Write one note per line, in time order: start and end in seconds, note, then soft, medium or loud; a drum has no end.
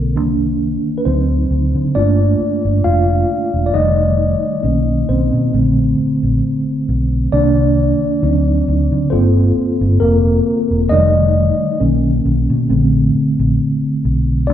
0.00 0.17 B1 medium
0.00 0.12 D3 medium
0.00 0.12 C4 medium
0.00 0.12 A4 soft
0.15 0.76 C2 medium
0.15 0.76 D#3 medium
0.15 0.76 A#3 soft
0.15 0.77 D4 medium
0.98 1.05 B4 medium
1.05 1.44 D2 loud
1.05 1.91 F#3 soft
1.05 1.91 C4 medium
1.05 1.91 D#4 medium
1.05 1.97 C5 medium
1.51 1.71 D2 medium
1.74 1.92 D3 medium
1.95 2.34 G1 medium
1.95 2.56 A3 soft
1.95 2.56 A#3 soft
1.95 2.81 D4 medium
1.95 2.56 F4 medium
1.95 2.87 D5 medium
2.41 muted fingered electric bass stroke soft
2.65 2.82 G1 medium
2.84 3.23 F1 medium
2.84 3.63 F4 medium
2.84 3.63 F5 medium
3.54 3.71 E1 medium
3.66 3.73 D5 medium
3.73 4.34 F1 medium
3.73 4.59 D#3 soft
3.73 4.59 G3 soft
3.73 4.59 A3 soft
3.73 5.04 D#4 medium
3.73 4.59 D5 medium
3.73 5.12 D#5 medium
4.63 5.03 B1 medium
4.63 5.49 D#3 soft
4.63 5.49 A#3 soft
4.63 5.49 C#4 medium
5.09 5.29 B1 medium
5.09 5.53 C4 medium
5.09 6.84 C5 medium
5.33 5.50 B2 medium
5.53 5.92 A#1 medium
5.53 6.83 D3 soft
5.53 6.83 A3 soft
5.53 6.84 C4 medium
5.99 muted fingered electric bass stroke soft
6.23 6.40 A#1 medium
6.89 7.27 B1 medium
7.32 7.92 C2 loud
7.32 8.18 D#3 medium
7.32 8.18 A#3 medium
7.32 9.08 D4 medium
7.32 9.17 D5 medium
8.22 8.61 D2 loud
8.22 9.07 F#3 medium
8.22 9.08 C4 soft
8.22 9.08 D#4 medium
8.68 8.88 D2 medium
8.92 9.09 D3 medium
9.10 9.51 G1 medium
9.10 10.01 A#3 soft
9.10 9.97 C4 medium
9.10 10.42 F4 medium
9.10 10.41 A4 medium
9.10 9.96 C5 medium
9.57 muted fingered electric bass stroke soft
9.81 9.98 G1 medium
10.00 10.40 F1 medium
10.00 10.87 A#3 medium
10.00 10.93 A#4 medium
10.71 10.88 E1 medium
10.89 11.50 F1 loud
10.89 11.51 D#3 medium
10.89 11.51 G3 medium
10.89 11.52 A3 soft
10.89 11.77 D#4 medium
10.89 11.52 D5 medium
10.89 11.75 D#5 loud
11.79 12.19 B1 loud
11.79 12.65 D#3 medium
11.79 12.65 A#3 soft
11.79 12.66 C#4 medium
12.25 12.46 B1 loud
12.50 12.67 B2 medium
12.68 13.09 A#1 loud
12.68 14.44 D3 medium
12.68 14.45 A3 medium
12.68 14.45 C4 medium
13.15 muted fingered electric bass stroke soft
13.39 13.57 A#1 medium
14.05 14.49 B1 medium
14.47 14.54 C2 loud
14.47 14.54 D#3 medium
14.47 14.54 A#3 medium
14.47 14.54 D4 medium
14.47 14.54 D5 medium